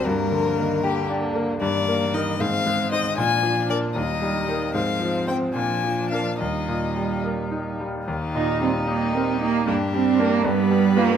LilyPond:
<<
  \new Staff \with { instrumentName = "Violin" } { \time 6/8 \key g \minor \tempo 4. = 76 bes'4. g'8 r4 | \key ees \major d''4 ees''8 f''4 ees''8 | aes''4 d''8 ees''4. | f''4 g''8 aes''4 f''8 |
ees''4. r4. | g'4. g'4. | g'4. b'4. | }
  \new Staff \with { instrumentName = "Violin" } { \time 6/8 \key g \minor bes4. bes4. | \key ees \major bes4. c'4. | d'4. ees'4. | c'4. d'4. |
ees'2~ ees'8 r8 | ees'2. | d'4. b4. | }
  \new Staff \with { instrumentName = "Grand piano" } { \time 6/8 \key g \minor g,8 d8 bes8 g'8 d'8 bes8 | \key ees \major g,8 bes8 <ees' bes'>8 aes,8 aes8 <ees' c''>8 | bes,8 f8 <d' bes'>8 ees,8 g8 <ees' bes'>8 | aes,8 f8 <c' c''>8 bes,8 f8 <d' bes'>8 |
ees,8 bes,8 g8 bes'8 ees'8 g8 | ees,8 bes,8 g8 ees'8 bes'8 ees'8 | g,8 g8 <d' bes'>8 g,8 g8 <f' b'>8 | }
  \new Staff \with { instrumentName = "Cello" } { \clef bass \time 6/8 \key g \minor g8 f8 ees8 d4. | \key ees \major ees2. | f4. g4. | f4. f4. |
g2~ g8 r8 | r8 ees'8 c'8 bes8 c'8 bes8 | bes8 c'8 bes8 g4 bes8 | }
>>